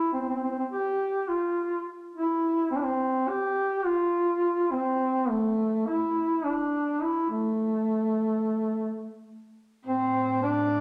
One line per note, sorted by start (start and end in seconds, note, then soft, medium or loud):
0.00 0.12 E4 loud
0.13 0.20 C4 medium
0.21 0.27 C4 medium
0.29 0.35 C4 medium
0.35 0.42 C4 medium
0.43 0.50 C4 medium
0.51 0.57 C4 medium
0.59 0.65 C4 medium
0.71 1.30 G4 loud
1.28 1.86 F4 medium
2.14 2.67 E4 medium
2.71 2.78 C4 medium
2.77 2.86 D4 medium
2.84 3.30 C4 medium
3.28 3.87 G4 loud
3.85 4.73 F4 medium
4.72 5.31 C4 medium
5.29 5.88 A3 medium
5.87 6.46 E4 medium
6.44 7.03 D4 medium
7.02 7.29 E4 medium
7.30 9.26 A3 medium
9.85 10.80 A2 medium
9.85 10.39 C4 medium
9.85 10.45 C5 medium
10.43 10.80 D4 medium
10.43 10.80 D5 medium